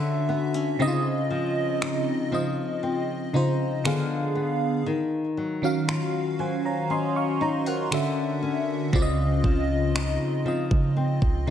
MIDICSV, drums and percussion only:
0, 0, Header, 1, 2, 480
1, 0, Start_track
1, 0, Key_signature, -5, "major"
1, 0, Tempo, 1016949
1, 375, Time_signature, 4, 2, 24, 8
1, 5429, End_track
2, 0, Start_track
2, 0, Title_t, "Drums"
2, 859, Note_on_c, 9, 26, 100
2, 907, Note_off_c, 9, 26, 0
2, 1819, Note_on_c, 9, 26, 104
2, 1866, Note_off_c, 9, 26, 0
2, 2779, Note_on_c, 9, 26, 101
2, 2826, Note_off_c, 9, 26, 0
2, 3739, Note_on_c, 9, 26, 106
2, 3786, Note_off_c, 9, 26, 0
2, 4216, Note_on_c, 9, 36, 102
2, 4263, Note_off_c, 9, 36, 0
2, 4456, Note_on_c, 9, 36, 84
2, 4503, Note_off_c, 9, 36, 0
2, 4700, Note_on_c, 9, 26, 107
2, 4747, Note_off_c, 9, 26, 0
2, 5056, Note_on_c, 9, 36, 100
2, 5103, Note_off_c, 9, 36, 0
2, 5296, Note_on_c, 9, 36, 73
2, 5343, Note_off_c, 9, 36, 0
2, 5429, End_track
0, 0, End_of_file